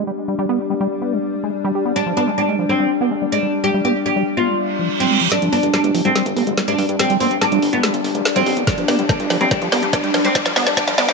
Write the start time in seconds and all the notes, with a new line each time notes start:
Already playing: G3 D4
0.07 G3
0.28 G3
0.39 G3
0.49 B3
0.70 G3
0.81 G3
1.02 B3
1.12 G3
1.44 G#3
1.65 G3
1.75 G4
1.85 B3
1.96 G3 D4
2.06 F3
2.17 B3 D4
2.27 G#3
2.38 G3 D4
2.48 G#3
2.59 F3
2.69 G3 C4
2.80 G3
3.01 B3
3.11 G#3
3.22 G3
3.32 G#3 D4
3.43 G3
3.64 G3 G4
3.74 G3
3.85 B3 G4
4.06 G3 G4
4.16 G3
4.37 B3 F4
4.48 G3, reverse cymbal
4.79 F3
5.00 G3 C4
5.11 G#3
5.21 F3
5.32 G3 D4, snare, closed hi-hat, riser
5.42 G1 F3, closed hi-hat
5.53 G1 B3 D4, open hi-hat
5.63 G1 G#3, closed hi-hat
5.73 G3 D4, snare, closed hi-hat
5.84 G1 G#3, closed hi-hat
5.95 G1 F3, open hi-hat
6.05 G1 G3 C4, closed hi-hat
6.16 G3, snare, closed hi-hat
6.26 G1, closed hi-hat
6.37 G1 B3, open hi-hat
6.47 G1 G#3, closed hi-hat
6.58 G3, snare, closed hi-hat
6.68 G2 G#3 D4, closed hi-hat
6.78 G2 G3, open hi-hat
6.89 G2, closed hi-hat
6.99 G3 C4, snare, closed hi-hat
7.10 G1 G3, closed hi-hat
7.20 G1 B3 C4, open hi-hat
7.31 G1, closed hi-hat
7.41 G3 D4, snare, closed hi-hat
7.52 G1 G3, closed hi-hat
7.62 G1, open hi-hat
7.73 G1 B3, closed hi-hat
7.83 G3, snare, closed hi-hat
7.94 G1, closed hi-hat
8.04 G1, open hi-hat
8.15 G1 G#3, closed hi-hat
8.25 snare, closed hi-hat
8.36 B1 G3 C4, closed hi-hat
8.46 B1 G4, open hi-hat
8.57 B1 B3, closed hi-hat
8.67 G3 D4, kick, snare, closed hi-hat
8.78 G1 F3, closed hi-hat
8.88 G1 B3 D4, snare, open hi-hat
8.99 G1 G3, closed hi-hat
9.09 G3 D4, kick, snare, closed hi-hat
9.20 G1 G3, closed hi-hat
9.30 G1 F3, snare, open hi-hat
9.41 G1 G3 C4, closed hi-hat
9.51 G3 D4, kick, snare, closed hi-hat
9.62 G1 F3, closed hi-hat
9.72 G1 B3 D4, snare, open hi-hat
9.83 G1 G3, closed hi-hat
9.93 G3 D4, kick, snare, closed hi-hat
10.04 G2 G3, closed hi-hat
10.14 G2 F3, snare, open hi-hat
10.25 G2 G3 C4, closed hi-hat
10.35 G3 D4, kick, snare, closed hi-hat
10.46 G1 F3, snare, closed hi-hat
10.56 G1 B3 D4, snare, open hi-hat
10.67 G1 G3, snare, closed hi-hat
10.77 G3 D4, kick, snare, closed hi-hat
10.88 G1 F3, snare, closed hi-hat
10.98 G1 B3 D4, snare, open hi-hat
11.09 G1 G3, snare, closed hi-hat